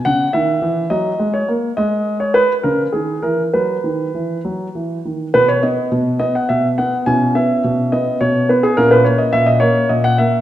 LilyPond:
<<
  \new Staff \with { instrumentName = "Grand piano" } { \time 6/8 \key cis \dorian \tempo 4. = 70 << { fis''8 e''4 dis''8. cis''16 r8 | dis''8. cis''16 b'8 ais'8 gis'8 ais'8 | b'4. r4. | b'16 cis''16 dis''4 dis''16 fis''16 e''8 fis''8 |
gis''8 e''4 dis''8 cis''8 b'16 gis'16 | ais'16 b'16 cis''16 dis''16 e''16 dis''16 cis''8 dis''16 fis''16 e''8 | } \\ { r2. | r2. | r2. | b2. |
<cis' e'>2. | <cis' e'>2. | } >> }
  \new Staff \with { instrumentName = "Grand piano" } { \clef bass \time 6/8 \key cis \dorian cis8 dis8 e8 fis8 gis8 ais8 | gis4. cis8 dis8 e8 | fis8 dis8 e8 fis8 e8 dis8 | b,8 b8 b,8 b8 b,8 b8 |
b,8 b8 b,8 b8 b,8 b8 | ais,8 ais8 ais,8 ais8 ais,8 ais8 | }
>>